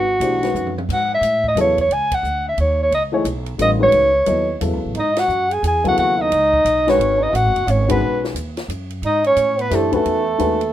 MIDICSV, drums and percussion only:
0, 0, Header, 1, 2, 480
1, 0, Start_track
1, 0, Tempo, 339559
1, 1245, Time_signature, 3, 2, 24, 8
1, 15166, End_track
2, 0, Start_track
2, 0, Title_t, "Drums"
2, 297, Note_on_c, 9, 44, 60
2, 297, Note_on_c, 9, 51, 61
2, 438, Note_off_c, 9, 44, 0
2, 438, Note_off_c, 9, 51, 0
2, 606, Note_on_c, 9, 51, 38
2, 611, Note_on_c, 9, 38, 35
2, 747, Note_off_c, 9, 51, 0
2, 753, Note_off_c, 9, 38, 0
2, 778, Note_on_c, 9, 44, 52
2, 783, Note_on_c, 9, 47, 39
2, 919, Note_off_c, 9, 44, 0
2, 925, Note_off_c, 9, 47, 0
2, 944, Note_on_c, 9, 47, 51
2, 1085, Note_off_c, 9, 47, 0
2, 1106, Note_on_c, 9, 47, 74
2, 1248, Note_off_c, 9, 47, 0
2, 1256, Note_on_c, 9, 36, 61
2, 1273, Note_on_c, 9, 49, 57
2, 1398, Note_off_c, 9, 36, 0
2, 1414, Note_off_c, 9, 49, 0
2, 1737, Note_on_c, 9, 44, 61
2, 1737, Note_on_c, 9, 51, 61
2, 1879, Note_off_c, 9, 44, 0
2, 1879, Note_off_c, 9, 51, 0
2, 2034, Note_on_c, 9, 36, 49
2, 2176, Note_off_c, 9, 36, 0
2, 2218, Note_on_c, 9, 44, 57
2, 2218, Note_on_c, 9, 51, 63
2, 2359, Note_off_c, 9, 44, 0
2, 2359, Note_off_c, 9, 51, 0
2, 2514, Note_on_c, 9, 36, 43
2, 2517, Note_on_c, 9, 51, 41
2, 2655, Note_off_c, 9, 36, 0
2, 2658, Note_off_c, 9, 51, 0
2, 2697, Note_on_c, 9, 51, 47
2, 2838, Note_off_c, 9, 51, 0
2, 2990, Note_on_c, 9, 51, 68
2, 2991, Note_on_c, 9, 36, 73
2, 3131, Note_off_c, 9, 51, 0
2, 3132, Note_off_c, 9, 36, 0
2, 3170, Note_on_c, 9, 44, 54
2, 3311, Note_off_c, 9, 44, 0
2, 3642, Note_on_c, 9, 51, 53
2, 3783, Note_off_c, 9, 51, 0
2, 4131, Note_on_c, 9, 51, 52
2, 4273, Note_off_c, 9, 51, 0
2, 4595, Note_on_c, 9, 44, 52
2, 4595, Note_on_c, 9, 51, 60
2, 4736, Note_off_c, 9, 44, 0
2, 4736, Note_off_c, 9, 51, 0
2, 4894, Note_on_c, 9, 51, 41
2, 5035, Note_off_c, 9, 51, 0
2, 5075, Note_on_c, 9, 44, 57
2, 5075, Note_on_c, 9, 51, 64
2, 5216, Note_off_c, 9, 44, 0
2, 5216, Note_off_c, 9, 51, 0
2, 5542, Note_on_c, 9, 51, 56
2, 5684, Note_off_c, 9, 51, 0
2, 6024, Note_on_c, 9, 44, 48
2, 6024, Note_on_c, 9, 51, 62
2, 6166, Note_off_c, 9, 44, 0
2, 6166, Note_off_c, 9, 51, 0
2, 6516, Note_on_c, 9, 44, 57
2, 6516, Note_on_c, 9, 51, 62
2, 6658, Note_off_c, 9, 44, 0
2, 6658, Note_off_c, 9, 51, 0
2, 6993, Note_on_c, 9, 51, 50
2, 7134, Note_off_c, 9, 51, 0
2, 7301, Note_on_c, 9, 51, 59
2, 7307, Note_on_c, 9, 38, 67
2, 7443, Note_off_c, 9, 51, 0
2, 7448, Note_off_c, 9, 38, 0
2, 7485, Note_on_c, 9, 44, 51
2, 7626, Note_off_c, 9, 44, 0
2, 7790, Note_on_c, 9, 51, 43
2, 7932, Note_off_c, 9, 51, 0
2, 7970, Note_on_c, 9, 44, 58
2, 7970, Note_on_c, 9, 51, 65
2, 8112, Note_off_c, 9, 44, 0
2, 8112, Note_off_c, 9, 51, 0
2, 8269, Note_on_c, 9, 51, 43
2, 8273, Note_on_c, 9, 36, 59
2, 8410, Note_off_c, 9, 51, 0
2, 8414, Note_off_c, 9, 36, 0
2, 8447, Note_on_c, 9, 51, 54
2, 8588, Note_off_c, 9, 51, 0
2, 8930, Note_on_c, 9, 51, 61
2, 9071, Note_off_c, 9, 51, 0
2, 9237, Note_on_c, 9, 36, 51
2, 9379, Note_off_c, 9, 36, 0
2, 9408, Note_on_c, 9, 44, 59
2, 9408, Note_on_c, 9, 51, 59
2, 9550, Note_off_c, 9, 44, 0
2, 9550, Note_off_c, 9, 51, 0
2, 9723, Note_on_c, 9, 51, 44
2, 9728, Note_on_c, 9, 38, 53
2, 9864, Note_off_c, 9, 51, 0
2, 9870, Note_off_c, 9, 38, 0
2, 9906, Note_on_c, 9, 51, 54
2, 10048, Note_off_c, 9, 51, 0
2, 10386, Note_on_c, 9, 44, 60
2, 10386, Note_on_c, 9, 51, 63
2, 10528, Note_off_c, 9, 44, 0
2, 10528, Note_off_c, 9, 51, 0
2, 10685, Note_on_c, 9, 51, 44
2, 10827, Note_off_c, 9, 51, 0
2, 10856, Note_on_c, 9, 44, 46
2, 10856, Note_on_c, 9, 51, 65
2, 10998, Note_off_c, 9, 44, 0
2, 10998, Note_off_c, 9, 51, 0
2, 11160, Note_on_c, 9, 51, 75
2, 11162, Note_on_c, 9, 36, 81
2, 11302, Note_off_c, 9, 51, 0
2, 11303, Note_off_c, 9, 36, 0
2, 11652, Note_on_c, 9, 38, 52
2, 11794, Note_off_c, 9, 38, 0
2, 11814, Note_on_c, 9, 44, 62
2, 11814, Note_on_c, 9, 51, 61
2, 11955, Note_off_c, 9, 44, 0
2, 11955, Note_off_c, 9, 51, 0
2, 12114, Note_on_c, 9, 51, 42
2, 12120, Note_on_c, 9, 38, 49
2, 12255, Note_off_c, 9, 51, 0
2, 12261, Note_off_c, 9, 38, 0
2, 12292, Note_on_c, 9, 44, 55
2, 12292, Note_on_c, 9, 51, 59
2, 12433, Note_off_c, 9, 44, 0
2, 12433, Note_off_c, 9, 51, 0
2, 12587, Note_on_c, 9, 51, 42
2, 12728, Note_off_c, 9, 51, 0
2, 12763, Note_on_c, 9, 51, 52
2, 12904, Note_off_c, 9, 51, 0
2, 13067, Note_on_c, 9, 51, 41
2, 13208, Note_off_c, 9, 51, 0
2, 13239, Note_on_c, 9, 44, 54
2, 13239, Note_on_c, 9, 51, 58
2, 13380, Note_off_c, 9, 44, 0
2, 13380, Note_off_c, 9, 51, 0
2, 13554, Note_on_c, 9, 51, 42
2, 13696, Note_off_c, 9, 51, 0
2, 13730, Note_on_c, 9, 44, 57
2, 13730, Note_on_c, 9, 51, 63
2, 13736, Note_on_c, 9, 38, 34
2, 13872, Note_off_c, 9, 44, 0
2, 13872, Note_off_c, 9, 51, 0
2, 13877, Note_off_c, 9, 38, 0
2, 14030, Note_on_c, 9, 51, 43
2, 14036, Note_on_c, 9, 36, 52
2, 14171, Note_off_c, 9, 51, 0
2, 14177, Note_off_c, 9, 36, 0
2, 14214, Note_on_c, 9, 51, 51
2, 14356, Note_off_c, 9, 51, 0
2, 14694, Note_on_c, 9, 44, 45
2, 14694, Note_on_c, 9, 51, 55
2, 14835, Note_off_c, 9, 44, 0
2, 14835, Note_off_c, 9, 51, 0
2, 14998, Note_on_c, 9, 51, 42
2, 15139, Note_off_c, 9, 51, 0
2, 15166, End_track
0, 0, End_of_file